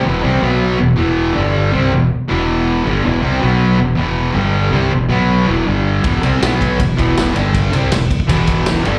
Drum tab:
RD |----------------|----------------|----------------|----------------|
SD |----------------|----------------|----------------|----------------|
BD |----------------|----------------|----------------|----------------|

RD |x-x-x-x-x-x-x-x-|x-x-x-x-x-x-x-x-|
SD |----o-------o---|----o-------o---|
BD |o-----o-o-o-----|o-----ooo-o-----|